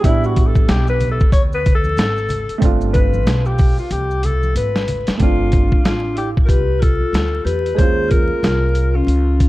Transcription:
0.01 upright bass A1, grand piano G3 B3, alto saxophone E4, kick, closed hi-hat, maracas
0.05 grand piano D4 E4
0.24 alto saxophone F#4, maracas
0.36 kick, closed hi-hat, maracas
0.47 alto saxophone A4
0.56 kick, high conga, maracas
0.68 upright bass B1, alto saxophone G4, snare, closed hi-hat, maracas
0.87 alto saxophone B4, maracas
1.00 closed hi-hat, low conga, maracas
1.11 alto saxophone A4
1.20 muted upright bass stroke, kick, maracas
1.32 upright bass D2, alto saxophone C#5, kick, closed hi-hat, high conga, maracas
1.53 alto saxophone B4, maracas
1.66 kick, closed hi-hat, low conga, maracas
1.75 alto saxophone A4
1.84 high conga, maracas
1.97 upright bass G#1, snare, closed hi-hat, maracas
2.18 maracas
2.29 closed hi-hat, low conga, maracas
2.49 muted upright bass stroke, closed hi-hat, maracas
2.58 upright bass G1, grand piano A3 C4, kick, closed hi-hat, maracas
2.63 grand piano D4 F4
2.81 maracas
2.93 alto saxophone B4, kick, closed hi-hat, maracas
3.13 high conga, maracas
3.26 upright bass B1, snare, closed hi-hat, maracas
3.45 alto saxophone G4, maracas
3.58 kick, open hi-hat, low conga, maracas
3.78 alto saxophone F4, muted upright bass stroke, maracas
3.91 upright bass C2, alto saxophone G4, closed hi-hat, high conga, maracas
4.11 maracas
4.23 alto saxophone A4, closed hi-hat, low conga, maracas
4.43 high conga, maracas
4.55 upright bass G#1, alto saxophone B4, closed hi-hat, maracas
4.76 snare, maracas
4.88 closed hi-hat, low conga, maracas
5.07 muted upright bass stroke, snare, closed hi-hat, maracas
5.17 upright bass G1, grand piano A3 C4, vibraphone D4, kick, closed hi-hat
5.22 grand piano D4 F4, alto saxophone F4
5.52 kick, closed hi-hat
5.72 muted upright bass stroke, kick
5.84 upright bass A1, vibraphone D4, alto saxophone F4, snare, closed hi-hat
6.16 vibraphone E4, alto saxophone G4, closed hi-hat
6.37 kick
6.43 vibraphone F4 G4, alto saxophone A#4
6.48 upright bass C2, alto saxophone B4, kick, closed hi-hat
6.79 vibraphone F4, alto saxophone A4, kick, closed hi-hat
7.01 muted upright bass stroke
7.13 upright bass D2, snare, closed hi-hat
7.45 upright bass E2, vibraphone G4, alto saxophone B4, closed hi-hat
7.66 closed hi-hat
7.75 upright bass D#2, grand piano G#3 A#3, vibraphone G#4, alto saxophone C5, kick
7.79 grand piano C#4 F4, closed hi-hat
8.08 vibraphone F4, alto saxophone A#4, kick, closed hi-hat
8.30 muted upright bass stroke
8.43 upright bass C2, snare, closed hi-hat
8.75 closed hi-hat
8.94 vibraphone C#4, alto saxophone F4
9.07 upright bass C#2, closed hi-hat
9.40 kick, closed hi-hat

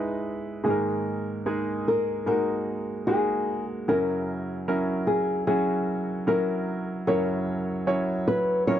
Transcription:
Already playing: grand piano G#2 G#3 B3 D#4 E4 B4, nylon-string guitar B4
0.64 grand piano G#2 D#3 G#3 A#3 D#4 G#4, nylon-string guitar G#4
0.70 grand piano A#4
1.46 grand piano G#3 A#3 D#4 G#4
1.88 nylon-string guitar A#4
2.26 grand piano G#3 A#3 D#4 F#4, nylon-string guitar A#4
3.07 grand piano G#3 A#3 D#4 F#4, nylon-string guitar G#4
3.88 grand piano F#2 C#3 F#3 C#4 E4 A#4, nylon-string guitar A#4
4.68 grand piano F#3 C#4 E4 A#4
5.07 nylon-string guitar G#4
5.47 grand piano F#3 C#4 E4 F#4, nylon-string guitar G#4
6.27 grand piano F#3 C#4 E4 A#4, nylon-string guitar A#4
7.07 grand piano F#2 C#3 F#3 C#4 E4 C#5, nylon-string guitar A#4
7.87 grand piano F#3 C#4 E4 C#5
8.28 nylon-string guitar B4
8.67 grand piano F#3 C#4 E4 A#4, nylon-string guitar C#5

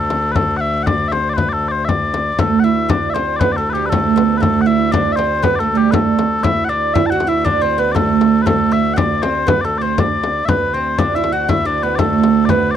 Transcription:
Already playing: viola da gamba D2, bagpipes A4
0.10 frame drum
0.32 bagpipes B4, frame drum
0.36 bagpipes A4
0.57 bagpipes E5 F#5
0.62 frame drum
0.83 bagpipes D5 F#5, frame drum
1.08 bagpipes C5 E5
1.12 frame drum
1.29 bagpipes D5
1.34 bagpipes B4 C5
1.38 frame drum
1.49 bagpipes D5
1.53 bagpipes A4
1.63 frame drum
1.68 bagpipes C5 D5
1.85 bagpipes D5 E5
1.89 frame drum
2.14 frame drum
2.39 viola da gamba D2, oud A3, bagpipes A4, frame drum
2.60 bagpipes F#5
2.64 oud E4, bagpipes E5, frame drum
2.89 oud D4, bagpipes D5, frame drum
3.10 bagpipes E5
3.14 oud C4, bagpipes C5, frame drum
3.36 bagpipes B4 D5
3.41 oud B3, frame drum
3.52 bagpipes D5
3.57 oud A3, bagpipes A4
3.67 bagpipes B4, frame drum
3.73 oud G3, bagpipes G4
3.86 bagpipes A4 B4
3.92 oud A3, frame drum
4.16 oud B3, frame drum
4.37 oud A3, bagpipes B4
4.42 bagpipes A4, frame drum
4.61 bagpipes F#5
4.66 oud E4, bagpipes E5
4.92 oud D4, bagpipes D5, frame drum
5.12 bagpipes C5 E5
5.17 oud C4, frame drum
5.43 oud B3, bagpipes B4, frame drum
5.56 bagpipes A4 D5
5.60 oud A3
5.75 oud G3, bagpipes G4
5.91 oud A3, bagpipes A4 B4, frame drum
6.19 frame drum
6.43 viola da gamba D2, oud E4, bagpipes E5, frame drum
6.65 bagpipes F#5
6.69 oud D4, bagpipes D5, frame drum
6.94 oud E4, bagpipes E5, frame drum
7.06 bagpipes F#5 A5
7.12 oud F#4
7.20 frame drum
7.27 oud E4, bagpipes E5
7.45 oud D4, bagpipes D5, frame drum
7.62 oud C4, bagpipes C5
7.71 frame drum
7.78 oud B3, bagpipes B4
7.92 oud A3, bagpipes A4 D5, frame drum
8.21 frame drum
8.42 oud A3, bagpipes B4
8.46 bagpipes A4, frame drum
8.71 oud E4, bagpipes E5, frame drum
8.94 oud D4, bagpipes D5 F#5, frame drum
9.22 oud C4, bagpipes C5, frame drum
9.47 oud B3, bagpipes B4, frame drum
9.61 oud A3, bagpipes A4 D5
9.78 oud C4, bagpipes D5
9.82 bagpipes C5
9.98 oud D4, bagpipes D5, frame drum
10.23 frame drum
10.45 oud B3, bagpipes B4 E5, frame drum
10.49 viola da gamba D2
10.73 oud C4, bagpipes C5
10.98 oud D4, bagpipes D5, frame drum
11.15 oud E4, bagpipes E5
11.24 frame drum
11.32 oud F#4, bagpipes F#5
11.49 oud E4, bagpipes E5, frame drum
11.65 oud D4, bagpipes D5
11.83 oud B3, bagpipes B4
11.96 oud A3, bagpipes A4 D5, frame drum
12.23 frame drum
12.45 bagpipes D5, frame drum
12.50 oud B3, bagpipes B4
12.71 bagpipes D5

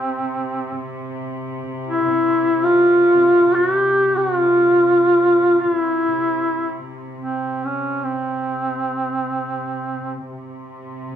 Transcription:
Already playing: cello section C3, duduk C4
1.87 duduk E4
2.64 duduk F4
3.55 duduk F#4
3.74 duduk G4
4.17 duduk F#4
4.36 duduk F4
5.61 duduk F4
5.74 duduk E4
7.18 duduk C4
7.66 duduk C#4
8.04 duduk C4
10.30 cello section C3

